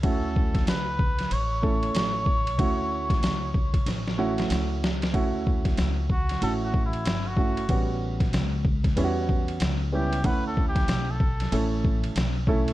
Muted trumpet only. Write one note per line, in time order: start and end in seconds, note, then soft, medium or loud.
0.06 0.64 A4 medium
0.69 1.34 B4 loud
1.33 4.51 C#5 loud
6.12 6.40 F#4 medium
6.43 6.53 A4 medium
6.65 6.84 F#4 medium
6.86 7.29 E4 medium
7.28 7.91 F#4 medium
9.95 10.27 G4 medium
10.26 10.47 B4 loud
10.47 10.66 A4 medium
10.69 11.13 G4 medium
11.11 11.74 A4 medium